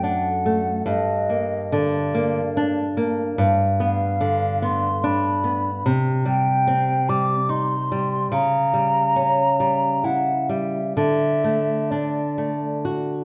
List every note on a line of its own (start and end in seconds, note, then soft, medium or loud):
0.00 0.84 F#2 medium
0.00 0.29 A3 medium
0.00 0.71 D4 medium
0.00 0.86 F#5 medium
0.46 0.88 A3 soft
0.86 3.35 G2 medium
0.86 1.75 D#5 loud
1.29 1.98 A#3 soft
1.72 2.41 D3 medium
1.72 2.99 D5 medium
2.14 2.82 A#3 medium
2.57 3.23 D4 medium
2.97 3.39 A#3 medium
3.38 5.81 G2 medium
3.80 4.46 B3 medium
3.80 4.60 F5 medium
4.21 4.87 D3 medium
4.62 5.29 B3 medium
4.62 5.07 C6 medium
5.04 5.70 D4 medium
5.04 5.87 B5 medium
5.44 5.85 B3 medium
5.86 8.29 C3 medium
6.25 6.92 G3 medium
6.25 7.11 G5 loud
6.67 7.34 C4 medium
7.09 7.75 G3 medium
7.09 7.52 D6 loud
7.49 8.16 D#4 medium
7.49 8.32 C6 medium
7.92 8.33 G3 soft
8.32 10.92 C#3 medium
8.32 10.06 A#5 loud
8.74 9.42 G3 soft
9.16 9.87 C#4 medium
9.60 10.32 G3 soft
10.04 10.77 E4 medium
10.04 10.51 F#5 medium
10.49 10.96 G3 soft
10.49 10.96 E5 medium
10.97 13.24 D3 medium
10.97 11.92 E5 medium
11.44 12.19 A3 soft
11.90 12.66 D4 soft
11.90 12.85 D5 medium
12.38 13.13 A3 soft
12.85 13.24 F#4 medium